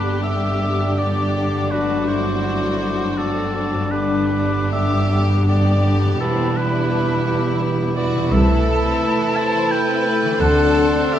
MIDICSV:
0, 0, Header, 1, 13, 480
1, 0, Start_track
1, 0, Key_signature, 1, "major"
1, 0, Tempo, 767263
1, 616, Tempo, 734394
1, 1095, Time_signature, 3, 2, 24, 8
1, 2536, Tempo, 814111
1, 3016, Tempo, 751880
1, 3496, Tempo, 705882
1, 7374, End_track
2, 0, Start_track
2, 0, Title_t, "Flute"
2, 0, Program_c, 0, 73
2, 0, Note_on_c, 0, 86, 29
2, 143, Note_off_c, 0, 86, 0
2, 146, Note_on_c, 0, 86, 33
2, 379, Note_off_c, 0, 86, 0
2, 383, Note_on_c, 0, 86, 29
2, 608, Note_off_c, 0, 86, 0
2, 612, Note_on_c, 0, 86, 26
2, 849, Note_off_c, 0, 86, 0
2, 863, Note_on_c, 0, 86, 29
2, 1094, Note_off_c, 0, 86, 0
2, 1097, Note_on_c, 0, 86, 34
2, 1331, Note_off_c, 0, 86, 0
2, 1335, Note_on_c, 0, 86, 30
2, 1571, Note_off_c, 0, 86, 0
2, 1577, Note_on_c, 0, 86, 37
2, 1807, Note_off_c, 0, 86, 0
2, 1811, Note_on_c, 0, 86, 32
2, 2040, Note_off_c, 0, 86, 0
2, 2044, Note_on_c, 0, 86, 31
2, 2282, Note_off_c, 0, 86, 0
2, 2291, Note_on_c, 0, 86, 31
2, 2532, Note_off_c, 0, 86, 0
2, 2536, Note_on_c, 0, 86, 36
2, 2761, Note_off_c, 0, 86, 0
2, 2765, Note_on_c, 0, 86, 32
2, 3006, Note_off_c, 0, 86, 0
2, 3009, Note_on_c, 0, 86, 42
2, 3244, Note_off_c, 0, 86, 0
2, 3248, Note_on_c, 0, 86, 34
2, 3485, Note_off_c, 0, 86, 0
2, 3487, Note_on_c, 0, 86, 34
2, 3727, Note_off_c, 0, 86, 0
2, 3731, Note_on_c, 0, 86, 32
2, 3975, Note_off_c, 0, 86, 0
2, 3979, Note_on_c, 0, 83, 40
2, 4214, Note_off_c, 0, 83, 0
2, 4218, Note_on_c, 0, 83, 42
2, 4455, Note_off_c, 0, 83, 0
2, 4459, Note_on_c, 0, 83, 47
2, 4696, Note_off_c, 0, 83, 0
2, 4700, Note_on_c, 0, 83, 42
2, 4935, Note_off_c, 0, 83, 0
2, 4944, Note_on_c, 0, 83, 42
2, 5175, Note_off_c, 0, 83, 0
2, 5179, Note_on_c, 0, 83, 37
2, 5412, Note_off_c, 0, 83, 0
2, 5416, Note_on_c, 0, 81, 48
2, 6639, Note_off_c, 0, 81, 0
2, 6852, Note_on_c, 0, 84, 52
2, 7374, Note_off_c, 0, 84, 0
2, 7374, End_track
3, 0, Start_track
3, 0, Title_t, "Oboe"
3, 0, Program_c, 1, 68
3, 0, Note_on_c, 1, 71, 46
3, 141, Note_off_c, 1, 71, 0
3, 145, Note_on_c, 1, 76, 53
3, 619, Note_on_c, 1, 74, 43
3, 629, Note_off_c, 1, 76, 0
3, 1091, Note_on_c, 1, 71, 49
3, 1100, Note_off_c, 1, 74, 0
3, 1333, Note_on_c, 1, 72, 43
3, 1343, Note_off_c, 1, 71, 0
3, 2050, Note_on_c, 1, 69, 51
3, 2060, Note_off_c, 1, 72, 0
3, 2529, Note_on_c, 1, 71, 49
3, 2538, Note_off_c, 1, 69, 0
3, 3005, Note_off_c, 1, 71, 0
3, 3009, Note_on_c, 1, 76, 59
3, 3321, Note_off_c, 1, 76, 0
3, 3494, Note_on_c, 1, 74, 57
3, 3960, Note_off_c, 1, 74, 0
3, 3985, Note_on_c, 1, 69, 58
3, 4231, Note_on_c, 1, 71, 48
3, 4241, Note_off_c, 1, 69, 0
3, 4944, Note_off_c, 1, 71, 0
3, 5179, Note_on_c, 1, 74, 58
3, 5424, Note_on_c, 1, 76, 64
3, 5434, Note_off_c, 1, 74, 0
3, 6130, Note_on_c, 1, 81, 81
3, 6140, Note_off_c, 1, 76, 0
3, 6369, Note_on_c, 1, 79, 74
3, 6379, Note_off_c, 1, 81, 0
3, 6836, Note_off_c, 1, 79, 0
3, 6840, Note_on_c, 1, 78, 82
3, 7337, Note_on_c, 1, 76, 75
3, 7347, Note_off_c, 1, 78, 0
3, 7374, Note_off_c, 1, 76, 0
3, 7374, End_track
4, 0, Start_track
4, 0, Title_t, "Clarinet"
4, 0, Program_c, 2, 71
4, 0, Note_on_c, 2, 67, 29
4, 150, Note_off_c, 2, 67, 0
4, 159, Note_on_c, 2, 67, 28
4, 389, Note_off_c, 2, 67, 0
4, 397, Note_on_c, 2, 67, 33
4, 616, Note_off_c, 2, 67, 0
4, 624, Note_on_c, 2, 67, 34
4, 855, Note_off_c, 2, 67, 0
4, 862, Note_on_c, 2, 67, 29
4, 1094, Note_off_c, 2, 67, 0
4, 1104, Note_on_c, 2, 66, 35
4, 1334, Note_off_c, 2, 66, 0
4, 1342, Note_on_c, 2, 66, 31
4, 1575, Note_off_c, 2, 66, 0
4, 1579, Note_on_c, 2, 66, 32
4, 1809, Note_off_c, 2, 66, 0
4, 1813, Note_on_c, 2, 66, 33
4, 2044, Note_off_c, 2, 66, 0
4, 2050, Note_on_c, 2, 66, 37
4, 2283, Note_off_c, 2, 66, 0
4, 2287, Note_on_c, 2, 66, 31
4, 2530, Note_off_c, 2, 66, 0
4, 2541, Note_on_c, 2, 67, 44
4, 2771, Note_off_c, 2, 67, 0
4, 2776, Note_on_c, 2, 67, 33
4, 3012, Note_off_c, 2, 67, 0
4, 3020, Note_on_c, 2, 67, 36
4, 3258, Note_off_c, 2, 67, 0
4, 3264, Note_on_c, 2, 67, 36
4, 3491, Note_off_c, 2, 67, 0
4, 3495, Note_on_c, 2, 67, 37
4, 3738, Note_off_c, 2, 67, 0
4, 3746, Note_on_c, 2, 67, 35
4, 3985, Note_off_c, 2, 67, 0
4, 3991, Note_on_c, 2, 67, 49
4, 4226, Note_off_c, 2, 67, 0
4, 4232, Note_on_c, 2, 67, 40
4, 4459, Note_off_c, 2, 67, 0
4, 4463, Note_on_c, 2, 67, 43
4, 4698, Note_off_c, 2, 67, 0
4, 4708, Note_on_c, 2, 67, 45
4, 4936, Note_off_c, 2, 67, 0
4, 4940, Note_on_c, 2, 67, 46
4, 5176, Note_off_c, 2, 67, 0
4, 5180, Note_on_c, 2, 67, 38
4, 5417, Note_off_c, 2, 67, 0
4, 5428, Note_on_c, 2, 69, 61
4, 7374, Note_off_c, 2, 69, 0
4, 7374, End_track
5, 0, Start_track
5, 0, Title_t, "Violin section"
5, 0, Program_c, 3, 48
5, 0, Note_on_c, 3, 62, 46
5, 149, Note_off_c, 3, 62, 0
5, 150, Note_on_c, 3, 67, 38
5, 615, Note_off_c, 3, 67, 0
5, 622, Note_on_c, 3, 67, 38
5, 1089, Note_off_c, 3, 67, 0
5, 1103, Note_on_c, 3, 62, 48
5, 1334, Note_off_c, 3, 62, 0
5, 1338, Note_on_c, 3, 64, 39
5, 2046, Note_on_c, 3, 60, 43
5, 2051, Note_off_c, 3, 64, 0
5, 2534, Note_off_c, 3, 60, 0
5, 2537, Note_on_c, 3, 62, 46
5, 3007, Note_off_c, 3, 62, 0
5, 3012, Note_on_c, 3, 67, 52
5, 3488, Note_off_c, 3, 67, 0
5, 3496, Note_on_c, 3, 67, 48
5, 3979, Note_off_c, 3, 67, 0
5, 3982, Note_on_c, 3, 60, 54
5, 4225, Note_on_c, 3, 62, 47
5, 4226, Note_off_c, 3, 60, 0
5, 4941, Note_off_c, 3, 62, 0
5, 5178, Note_on_c, 3, 66, 53
5, 5404, Note_off_c, 3, 66, 0
5, 5424, Note_on_c, 3, 69, 56
5, 6134, Note_off_c, 3, 69, 0
5, 6135, Note_on_c, 3, 72, 68
5, 6368, Note_on_c, 3, 71, 69
5, 6369, Note_off_c, 3, 72, 0
5, 6835, Note_off_c, 3, 71, 0
5, 6842, Note_on_c, 3, 69, 74
5, 7332, Note_off_c, 3, 69, 0
5, 7334, Note_on_c, 3, 67, 61
5, 7374, Note_off_c, 3, 67, 0
5, 7374, End_track
6, 0, Start_track
6, 0, Title_t, "Violin section"
6, 0, Program_c, 4, 48
6, 0, Note_on_c, 4, 67, 30
6, 1069, Note_off_c, 4, 67, 0
6, 1095, Note_on_c, 4, 66, 37
6, 2510, Note_off_c, 4, 66, 0
6, 2531, Note_on_c, 4, 62, 32
6, 3958, Note_off_c, 4, 62, 0
6, 3983, Note_on_c, 4, 64, 45
6, 5393, Note_off_c, 4, 64, 0
6, 5419, Note_on_c, 4, 64, 48
6, 6815, Note_off_c, 4, 64, 0
6, 6843, Note_on_c, 4, 62, 61
6, 7374, Note_off_c, 4, 62, 0
6, 7374, End_track
7, 0, Start_track
7, 0, Title_t, "Harp"
7, 0, Program_c, 5, 46
7, 0, Note_on_c, 5, 43, 31
7, 0, Note_on_c, 5, 59, 26
7, 0, Note_on_c, 5, 62, 28
7, 0, Note_on_c, 5, 67, 27
7, 971, Note_off_c, 5, 43, 0
7, 979, Note_on_c, 5, 43, 33
7, 1008, Note_on_c, 5, 57, 25
7, 1029, Note_off_c, 5, 62, 0
7, 1037, Note_on_c, 5, 62, 27
7, 1065, Note_on_c, 5, 66, 27
7, 1073, Note_off_c, 5, 59, 0
7, 1102, Note_off_c, 5, 67, 0
7, 2409, Note_off_c, 5, 43, 0
7, 2417, Note_on_c, 5, 43, 37
7, 2448, Note_on_c, 5, 59, 28
7, 2471, Note_off_c, 5, 62, 0
7, 2478, Note_on_c, 5, 62, 31
7, 2505, Note_on_c, 5, 67, 29
7, 2512, Note_off_c, 5, 57, 0
7, 2541, Note_off_c, 5, 66, 0
7, 3866, Note_on_c, 5, 40, 38
7, 3887, Note_off_c, 5, 59, 0
7, 3895, Note_on_c, 5, 59, 37
7, 3925, Note_on_c, 5, 64, 34
7, 3946, Note_off_c, 5, 43, 0
7, 3948, Note_off_c, 5, 67, 0
7, 3956, Note_on_c, 5, 67, 33
7, 3978, Note_off_c, 5, 62, 0
7, 5301, Note_on_c, 5, 48, 48
7, 5331, Note_on_c, 5, 57, 40
7, 5353, Note_off_c, 5, 64, 0
7, 5361, Note_on_c, 5, 64, 41
7, 5381, Note_off_c, 5, 40, 0
7, 5392, Note_on_c, 5, 69, 43
7, 5396, Note_off_c, 5, 59, 0
7, 5426, Note_off_c, 5, 67, 0
7, 6720, Note_on_c, 5, 50, 51
7, 6742, Note_off_c, 5, 57, 0
7, 6751, Note_on_c, 5, 57, 44
7, 6781, Note_on_c, 5, 62, 44
7, 6802, Note_off_c, 5, 48, 0
7, 6813, Note_on_c, 5, 72, 45
7, 6832, Note_off_c, 5, 64, 0
7, 7374, Note_off_c, 5, 50, 0
7, 7374, Note_off_c, 5, 57, 0
7, 7374, Note_off_c, 5, 62, 0
7, 7374, Note_off_c, 5, 69, 0
7, 7374, Note_off_c, 5, 72, 0
7, 7374, End_track
8, 0, Start_track
8, 0, Title_t, "French horn section"
8, 0, Program_c, 6, 60
8, 0, Note_on_c, 6, 55, 29
8, 0, Note_on_c, 6, 62, 34
8, 1069, Note_off_c, 6, 55, 0
8, 1091, Note_on_c, 6, 54, 37
8, 2508, Note_off_c, 6, 62, 0
8, 2534, Note_off_c, 6, 54, 0
8, 2540, Note_on_c, 6, 62, 43
8, 2541, Note_on_c, 6, 55, 37
8, 3963, Note_off_c, 6, 62, 0
8, 3979, Note_on_c, 6, 64, 40
8, 5306, Note_off_c, 6, 55, 0
8, 5422, Note_on_c, 6, 57, 47
8, 6812, Note_off_c, 6, 64, 0
8, 6842, Note_on_c, 6, 60, 59
8, 7374, Note_off_c, 6, 57, 0
8, 7374, Note_off_c, 6, 60, 0
8, 7374, End_track
9, 0, Start_track
9, 0, Title_t, "Viola section"
9, 0, Program_c, 7, 48
9, 0, Note_on_c, 7, 59, 35
9, 0, Note_on_c, 7, 62, 38
9, 1067, Note_off_c, 7, 59, 0
9, 1090, Note_on_c, 7, 57, 40
9, 2507, Note_off_c, 7, 57, 0
9, 2508, Note_off_c, 7, 62, 0
9, 2532, Note_on_c, 7, 55, 41
9, 2533, Note_on_c, 7, 59, 47
9, 5394, Note_off_c, 7, 55, 0
9, 5394, Note_off_c, 7, 59, 0
9, 5421, Note_on_c, 7, 48, 51
9, 5423, Note_on_c, 7, 57, 50
9, 5534, Note_off_c, 7, 48, 0
9, 5542, Note_on_c, 7, 52, 52
9, 5656, Note_off_c, 7, 57, 0
9, 5662, Note_off_c, 7, 52, 0
9, 5664, Note_on_c, 7, 57, 45
9, 5782, Note_off_c, 7, 57, 0
9, 5784, Note_on_c, 7, 60, 46
9, 5901, Note_off_c, 7, 60, 0
9, 5906, Note_on_c, 7, 57, 50
9, 6015, Note_on_c, 7, 52, 45
9, 6020, Note_off_c, 7, 57, 0
9, 6132, Note_off_c, 7, 52, 0
9, 6135, Note_on_c, 7, 48, 42
9, 6251, Note_off_c, 7, 48, 0
9, 6251, Note_on_c, 7, 52, 49
9, 6366, Note_on_c, 7, 57, 55
9, 6369, Note_off_c, 7, 52, 0
9, 6486, Note_off_c, 7, 57, 0
9, 6487, Note_on_c, 7, 60, 45
9, 6605, Note_off_c, 7, 60, 0
9, 6606, Note_on_c, 7, 57, 51
9, 6724, Note_off_c, 7, 57, 0
9, 6725, Note_on_c, 7, 52, 47
9, 6845, Note_off_c, 7, 52, 0
9, 6845, Note_on_c, 7, 50, 54
9, 6958, Note_off_c, 7, 50, 0
9, 6971, Note_on_c, 7, 54, 51
9, 7091, Note_off_c, 7, 54, 0
9, 7093, Note_on_c, 7, 57, 49
9, 7213, Note_on_c, 7, 60, 55
9, 7214, Note_off_c, 7, 57, 0
9, 7334, Note_off_c, 7, 60, 0
9, 7338, Note_on_c, 7, 57, 57
9, 7374, Note_off_c, 7, 57, 0
9, 7374, End_track
10, 0, Start_track
10, 0, Title_t, "Bassoon"
10, 0, Program_c, 8, 70
10, 0, Note_on_c, 8, 50, 29
10, 147, Note_off_c, 8, 50, 0
10, 151, Note_on_c, 8, 50, 32
10, 385, Note_off_c, 8, 50, 0
10, 396, Note_on_c, 8, 50, 28
10, 616, Note_off_c, 8, 50, 0
10, 625, Note_on_c, 8, 50, 30
10, 856, Note_off_c, 8, 50, 0
10, 865, Note_on_c, 8, 50, 30
10, 1093, Note_off_c, 8, 50, 0
10, 1097, Note_on_c, 8, 50, 36
10, 1331, Note_off_c, 8, 50, 0
10, 1338, Note_on_c, 8, 50, 30
10, 1573, Note_off_c, 8, 50, 0
10, 1577, Note_on_c, 8, 50, 37
10, 1809, Note_off_c, 8, 50, 0
10, 1818, Note_on_c, 8, 50, 35
10, 2047, Note_off_c, 8, 50, 0
10, 2053, Note_on_c, 8, 50, 35
10, 2286, Note_off_c, 8, 50, 0
10, 2296, Note_on_c, 8, 50, 32
10, 2531, Note_off_c, 8, 50, 0
10, 2535, Note_on_c, 8, 50, 43
10, 2768, Note_off_c, 8, 50, 0
10, 2772, Note_on_c, 8, 50, 33
10, 3010, Note_off_c, 8, 50, 0
10, 3013, Note_on_c, 8, 50, 37
10, 3253, Note_off_c, 8, 50, 0
10, 3257, Note_on_c, 8, 50, 35
10, 3489, Note_off_c, 8, 50, 0
10, 3497, Note_on_c, 8, 50, 42
10, 3737, Note_off_c, 8, 50, 0
10, 3741, Note_on_c, 8, 50, 37
10, 3982, Note_off_c, 8, 50, 0
10, 3985, Note_on_c, 8, 52, 39
10, 4222, Note_off_c, 8, 52, 0
10, 4227, Note_on_c, 8, 52, 37
10, 4459, Note_off_c, 8, 52, 0
10, 4463, Note_on_c, 8, 52, 44
10, 4698, Note_off_c, 8, 52, 0
10, 4704, Note_on_c, 8, 52, 40
10, 4935, Note_off_c, 8, 52, 0
10, 4939, Note_on_c, 8, 52, 48
10, 5176, Note_off_c, 8, 52, 0
10, 5184, Note_on_c, 8, 52, 43
10, 5416, Note_off_c, 8, 52, 0
10, 5420, Note_on_c, 8, 52, 49
10, 6845, Note_on_c, 8, 50, 59
10, 6855, Note_off_c, 8, 52, 0
10, 7374, Note_off_c, 8, 50, 0
10, 7374, End_track
11, 0, Start_track
11, 0, Title_t, "Timpani"
11, 0, Program_c, 10, 47
11, 0, Note_on_c, 10, 43, 43
11, 362, Note_off_c, 10, 43, 0
11, 7374, End_track
12, 0, Start_track
12, 0, Title_t, "Cello section"
12, 0, Program_c, 11, 48
12, 0, Note_on_c, 11, 43, 37
12, 2510, Note_off_c, 11, 43, 0
12, 2531, Note_on_c, 11, 43, 47
12, 3959, Note_off_c, 11, 43, 0
12, 3981, Note_on_c, 11, 40, 50
12, 5392, Note_off_c, 11, 40, 0
12, 5422, Note_on_c, 11, 36, 69
12, 5801, Note_off_c, 11, 36, 0
12, 6843, Note_on_c, 11, 38, 69
12, 7232, Note_off_c, 11, 38, 0
12, 7374, End_track
13, 0, Start_track
13, 0, Title_t, "Double bass section"
13, 0, Program_c, 12, 48
13, 0, Note_on_c, 12, 31, 29
13, 2510, Note_off_c, 12, 31, 0
13, 2535, Note_on_c, 12, 31, 42
13, 3961, Note_off_c, 12, 31, 0
13, 3989, Note_on_c, 12, 28, 44
13, 5396, Note_off_c, 12, 28, 0
13, 5422, Note_on_c, 12, 36, 59
13, 5801, Note_off_c, 12, 36, 0
13, 6843, Note_on_c, 12, 38, 59
13, 7232, Note_off_c, 12, 38, 0
13, 7374, End_track
0, 0, End_of_file